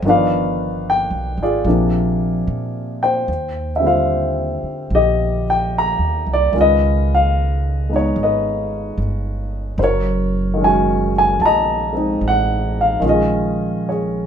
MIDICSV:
0, 0, Header, 1, 4, 480
1, 0, Start_track
1, 0, Tempo, 811908
1, 18, Time_signature, 4, 2, 24, 8
1, 8434, End_track
2, 0, Start_track
2, 0, Title_t, "Grand piano"
2, 0, Program_c, 0, 0
2, 0, Control_c, 0, 64, 127
2, 24, Control_c, 0, 64, 0
2, 30, Note_on_c, 0, 51, 53
2, 34, Note_on_c, 0, 53, 41
2, 35, Note_on_c, 0, 59, 48
2, 38, Note_on_c, 0, 62, 55
2, 54, Note_on_c, 0, 77, 72
2, 56, Note_on_c, 0, 74, 53
2, 57, Note_on_c, 0, 71, 59
2, 140, Control_c, 0, 64, 127
2, 529, Note_off_c, 0, 77, 0
2, 530, Note_on_c, 0, 79, 80
2, 812, Note_off_c, 0, 79, 0
2, 836, Note_off_c, 0, 74, 0
2, 843, Note_on_c, 0, 65, 52
2, 843, Note_on_c, 0, 68, 50
2, 845, Note_on_c, 0, 74, 65
2, 974, Note_off_c, 0, 71, 0
2, 977, Note_off_c, 0, 53, 0
2, 981, Note_off_c, 0, 62, 0
2, 982, Note_on_c, 0, 48, 46
2, 984, Note_off_c, 0, 51, 0
2, 985, Note_on_c, 0, 58, 42
2, 986, Note_on_c, 0, 53, 42
2, 987, Note_off_c, 0, 59, 0
2, 987, Control_c, 0, 64, 0
2, 989, Note_on_c, 0, 62, 47
2, 1107, Control_c, 0, 64, 127
2, 1769, Note_off_c, 0, 65, 0
2, 1769, Note_off_c, 0, 68, 0
2, 1770, Note_off_c, 0, 74, 0
2, 1789, Note_on_c, 0, 79, 70
2, 1796, Note_on_c, 0, 72, 51
2, 1943, Note_off_c, 0, 48, 0
2, 1944, Note_off_c, 0, 58, 0
2, 1945, Note_off_c, 0, 53, 0
2, 1947, Note_off_c, 0, 62, 0
2, 1948, Control_c, 0, 64, 0
2, 2048, Control_c, 0, 64, 127
2, 2186, Note_off_c, 0, 79, 0
2, 2223, Note_on_c, 0, 76, 51
2, 2245, Note_on_c, 0, 50, 45
2, 2253, Note_on_c, 0, 55, 41
2, 2263, Note_on_c, 0, 60, 40
2, 2269, Note_off_c, 0, 76, 0
2, 2273, Note_on_c, 0, 65, 43
2, 2277, Note_off_c, 0, 72, 0
2, 2285, Note_on_c, 0, 77, 64
2, 2286, Note_on_c, 0, 72, 51
2, 2925, Note_on_c, 0, 67, 56
2, 2925, Note_on_c, 0, 75, 75
2, 2934, Note_off_c, 0, 77, 0
2, 3211, Note_off_c, 0, 72, 0
2, 3242, Note_off_c, 0, 75, 0
2, 3251, Note_on_c, 0, 79, 70
2, 3402, Note_off_c, 0, 79, 0
2, 3420, Note_on_c, 0, 82, 77
2, 3729, Note_off_c, 0, 82, 0
2, 3745, Note_on_c, 0, 74, 75
2, 3850, Note_off_c, 0, 67, 0
2, 3855, Note_off_c, 0, 50, 0
2, 3855, Note_on_c, 0, 51, 42
2, 3859, Note_off_c, 0, 55, 0
2, 3861, Note_on_c, 0, 56, 40
2, 3864, Note_off_c, 0, 60, 0
2, 3869, Note_off_c, 0, 65, 0
2, 3869, Control_c, 0, 64, 0
2, 3873, Note_on_c, 0, 61, 41
2, 3875, Note_off_c, 0, 74, 0
2, 3884, Note_on_c, 0, 65, 47
2, 3906, Note_on_c, 0, 75, 75
2, 3911, Note_on_c, 0, 71, 56
2, 3987, Control_c, 0, 64, 127
2, 4212, Note_off_c, 0, 75, 0
2, 4224, Note_on_c, 0, 77, 72
2, 4658, Note_off_c, 0, 56, 0
2, 4667, Note_on_c, 0, 56, 34
2, 4676, Note_on_c, 0, 59, 37
2, 4686, Note_on_c, 0, 63, 42
2, 4696, Note_off_c, 0, 77, 0
2, 4705, Note_on_c, 0, 73, 73
2, 4822, Note_off_c, 0, 71, 0
2, 4848, Note_off_c, 0, 73, 0
2, 4865, Note_on_c, 0, 75, 60
2, 4873, Note_on_c, 0, 71, 44
2, 5299, Note_off_c, 0, 75, 0
2, 5777, Note_off_c, 0, 51, 0
2, 5783, Note_off_c, 0, 71, 0
2, 5784, Note_off_c, 0, 56, 0
2, 5786, Note_off_c, 0, 61, 0
2, 5788, Note_off_c, 0, 59, 0
2, 5788, Control_c, 0, 64, 0
2, 5789, Note_on_c, 0, 72, 59
2, 5791, Note_off_c, 0, 65, 0
2, 5793, Note_off_c, 0, 63, 0
2, 5801, Note_off_c, 0, 72, 0
2, 5807, Note_on_c, 0, 70, 52
2, 5815, Note_on_c, 0, 73, 75
2, 5896, Control_c, 0, 64, 127
2, 6230, Note_on_c, 0, 51, 53
2, 6251, Note_on_c, 0, 56, 43
2, 6275, Note_on_c, 0, 61, 44
2, 6291, Note_off_c, 0, 73, 0
2, 6292, Note_on_c, 0, 80, 79
2, 6299, Note_on_c, 0, 66, 52
2, 6573, Note_off_c, 0, 80, 0
2, 6612, Note_on_c, 0, 80, 84
2, 6720, Note_off_c, 0, 80, 0
2, 6729, Note_off_c, 0, 70, 0
2, 6748, Note_on_c, 0, 81, 60
2, 6760, Note_off_c, 0, 81, 0
2, 6772, Note_on_c, 0, 75, 60
2, 6772, Note_on_c, 0, 82, 85
2, 7042, Note_off_c, 0, 56, 0
2, 7051, Note_on_c, 0, 56, 39
2, 7063, Note_on_c, 0, 60, 36
2, 7074, Note_on_c, 0, 63, 42
2, 7250, Note_off_c, 0, 82, 0
2, 7258, Note_on_c, 0, 78, 80
2, 7567, Note_off_c, 0, 78, 0
2, 7573, Note_on_c, 0, 77, 69
2, 7675, Note_off_c, 0, 51, 0
2, 7684, Note_on_c, 0, 51, 49
2, 7685, Note_off_c, 0, 56, 0
2, 7692, Note_off_c, 0, 75, 0
2, 7694, Note_on_c, 0, 56, 46
2, 7697, Note_off_c, 0, 61, 0
2, 7702, Note_off_c, 0, 60, 0
2, 7706, Note_on_c, 0, 61, 46
2, 7707, Note_off_c, 0, 63, 0
2, 7708, Control_c, 0, 64, 0
2, 7713, Note_on_c, 0, 65, 57
2, 7719, Note_off_c, 0, 66, 0
2, 7721, Note_off_c, 0, 77, 0
2, 7739, Note_on_c, 0, 75, 70
2, 7747, Note_on_c, 0, 68, 53
2, 7792, Control_c, 0, 64, 127
2, 8207, Note_off_c, 0, 68, 0
2, 8211, Note_on_c, 0, 73, 55
2, 8213, Note_off_c, 0, 75, 0
2, 8215, Note_on_c, 0, 68, 38
2, 8434, Note_off_c, 0, 51, 0
2, 8434, Note_off_c, 0, 56, 0
2, 8434, Note_off_c, 0, 61, 0
2, 8434, Note_off_c, 0, 65, 0
2, 8434, Note_off_c, 0, 68, 0
2, 8434, Note_off_c, 0, 73, 0
2, 8434, End_track
3, 0, Start_track
3, 0, Title_t, "Upright bass"
3, 0, Program_c, 1, 32
3, 15, Note_on_c, 1, 31, 73
3, 633, Note_off_c, 1, 31, 0
3, 653, Note_on_c, 1, 35, 55
3, 804, Note_off_c, 1, 35, 0
3, 813, Note_on_c, 1, 32, 56
3, 964, Note_off_c, 1, 32, 0
3, 973, Note_on_c, 1, 34, 73
3, 1433, Note_off_c, 1, 34, 0
3, 1463, Note_on_c, 1, 46, 66
3, 1919, Note_off_c, 1, 46, 0
3, 1940, Note_on_c, 1, 39, 70
3, 2717, Note_off_c, 1, 39, 0
3, 2899, Note_on_c, 1, 34, 67
3, 3517, Note_off_c, 1, 34, 0
3, 3540, Note_on_c, 1, 39, 50
3, 3690, Note_off_c, 1, 39, 0
3, 3704, Note_on_c, 1, 36, 61
3, 3852, Note_off_c, 1, 36, 0
3, 3860, Note_on_c, 1, 37, 72
3, 4797, Note_off_c, 1, 37, 0
3, 4824, Note_on_c, 1, 32, 69
3, 5279, Note_off_c, 1, 32, 0
3, 5306, Note_on_c, 1, 31, 65
3, 5760, Note_off_c, 1, 31, 0
3, 5780, Note_on_c, 1, 30, 76
3, 6716, Note_off_c, 1, 30, 0
3, 6739, Note_on_c, 1, 34, 70
3, 7196, Note_off_c, 1, 34, 0
3, 7220, Note_on_c, 1, 33, 66
3, 7676, Note_off_c, 1, 33, 0
3, 7697, Note_on_c, 1, 34, 74
3, 8434, Note_off_c, 1, 34, 0
3, 8434, End_track
4, 0, Start_track
4, 0, Title_t, "Muted upright bass strokes"
4, 2739, Note_on_c, 9, 29, 29
4, 2798, Note_off_c, 9, 29, 0
4, 8434, End_track
0, 0, End_of_file